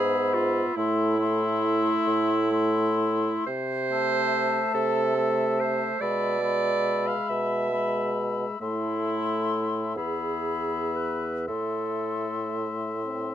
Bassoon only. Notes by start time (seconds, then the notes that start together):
Already playing: G#2
0.77 A2
2.07 A2
3.47 C3
4.75 C3
6.02 B2
7.30 B2
8.62 A2
9.98 E2
11.49 A2